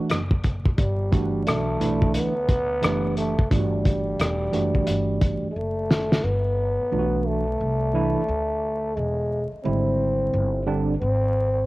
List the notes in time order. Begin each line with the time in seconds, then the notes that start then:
Already playing: E3 A3 D4 F#4
0.10 F#1, cross-stick, closed hi-hat
0.31 kick
0.44 kick, closed hi-hat
0.66 kick
0.78 G1 G3, kick, closed hi-hat
1.11 E3 A3 D4 F#4, kick, closed hi-hat
1.47 B1 A3, cross-stick, closed hi-hat
1.80 B1 E3 A3 D4 E4, closed hi-hat
2.02 kick
2.14 D2 B3, closed hi-hat
2.49 kick, closed hi-hat
2.82 F#1 E3 A3 D4 G4, cross-stick, closed hi-hat
3.17 A3, closed hi-hat
3.39 kick
3.50 G1 E3 G3 A3 D4 F4, kick, closed hi-hat
3.58 F#4
3.85 kick, closed hi-hat
4.20 E1, cross-stick, closed hi-hat
4.52 F#1 E3 A3 D4 F#4, closed hi-hat
4.75 kick
4.87 G1, closed hi-hat
5.21 kick, closed hi-hat
5.43 muted upright bass stroke
5.51 G#3
5.56 F#1 A3
5.91 snare
6.12 snare
6.24 G1 B3
6.79 muted upright bass stroke
6.91 B1 E3 A3 D4 F4
6.99 F#4
7.27 A3
7.61 C2
7.94 E3 A3 D4 E4
8.16 muted upright bass stroke
8.28 D2
8.96 E1 G#3
9.52 muted upright bass stroke
9.64 G#1 D3 G3 C4 E4
10.33 G1
10.66 D3 G3 C4 D4
11.01 G#1 C4